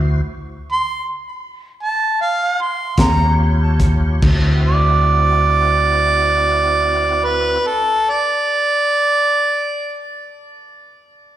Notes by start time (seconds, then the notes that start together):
Already playing: D2 E4 F#4 C5
0.72 C6
1.83 A5
2.21 F5
2.61 C6
2.98 D#2 F4 G4 C#5 A#5, kick, snare, closed hi-hat
3.80 kick, closed hi-hat
4.22 D2 C4 E4 F#4, kick, crash
4.66 D5
7.25 B4
7.67 A4
8.10 D5